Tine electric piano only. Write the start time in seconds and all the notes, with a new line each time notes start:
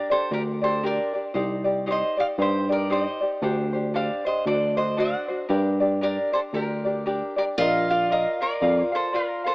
0.31 D2
1.35 C2
2.38 G2
3.42 D2
4.46 D2
5.50 G2
6.54 D2
7.58 A#1
8.62 F2